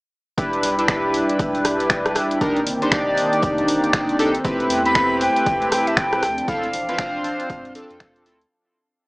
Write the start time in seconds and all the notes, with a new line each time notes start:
0.38 E1 G3 D4 E4 G4 B4 D5, kick, closed hi-hat
0.51 D5, closed hi-hat
0.63 B1, snare, closed hi-hat, open hi-hat
0.78 D4 E4 G4 B4, closed hi-hat
0.88 D4 E4 G4 B4, finger snap, kick, snare, closed hi-hat
1.03 G5
1.14 closed hi-hat, open hi-hat
1.29 B5, closed hi-hat
1.39 A1, kick, closed hi-hat
1.54 closed hi-hat
1.65 B1, cross-stick, closed hi-hat, open hi-hat
1.80 snare, closed hi-hat
1.90 finger snap, kick, snare, closed hi-hat
2.06 cross-stick, closed hi-hat
2.15 E1, cross-stick, snare, closed hi-hat, open hi-hat
2.31 closed hi-hat
2.41 C2 D#3 A#3 C4 D4 D#4 G4 A#4, kick, closed hi-hat
2.57 closed hi-hat
2.67 G1, closed hi-hat, open hi-hat
2.71 C4
2.82 D4 D#4 G4 C5, closed hi-hat
2.92 D4 D#4 G4 D5, finger snap, kick, snare, closed hi-hat
3.17 closed hi-hat, open hi-hat
3.33 A#5, closed hi-hat
3.42 F2, kick, closed hi-hat
3.58 closed hi-hat
3.68 G1, closed hi-hat, open hi-hat
3.84 closed hi-hat
3.93 finger snap, kick, snare, closed hi-hat
4.09 closed hi-hat
4.19 C2 D4 D#4 G4 A4, snare, closed hi-hat, open hi-hat
4.35 closed hi-hat
4.44 A1 A3 C4 E4 G4 B4, kick, closed hi-hat
4.60 closed hi-hat
4.70 E2, snare, closed hi-hat, open hi-hat
4.85 C4 E4 G4 B4 B5, closed hi-hat
4.95 C4 E4 G4 B4, finger snap, kick, snare, closed hi-hat
5.21 G5, closed hi-hat, open hi-hat
5.26 A5
5.36 closed hi-hat
5.46 D2, kick, closed hi-hat
5.62 closed hi-hat
5.72 E1 G5, cross-stick, closed hi-hat, open hi-hat
5.87 E5, snare, closed hi-hat
5.97 G5, finger snap, kick, snare, closed hi-hat
6.13 cross-stick, closed hi-hat
6.23 D2 F3 C4 D4 D5, cross-stick, snare, closed hi-hat, open hi-hat
6.38 closed hi-hat
6.48 D2 C4 E4 F4 A4 F5, kick, closed hi-hat
6.63 closed hi-hat
6.73 A1, closed hi-hat, open hi-hat
6.89 C4 E4 F4 B4, closed hi-hat
6.98 C4 D4 F4 C5, finger snap, kick, snare, closed hi-hat
7.24 closed hi-hat, open hi-hat
7.40 closed hi-hat
7.50 G2, kick, closed hi-hat
7.65 closed hi-hat
7.75 A1 C4 D4 F4 A4, closed hi-hat, open hi-hat
7.90 F2, closed hi-hat
8.00 finger snap, kick, snare, closed hi-hat
8.16 closed hi-hat
8.26 D2 C4 E4 F4 A4, snare, closed hi-hat, open hi-hat
8.41 closed hi-hat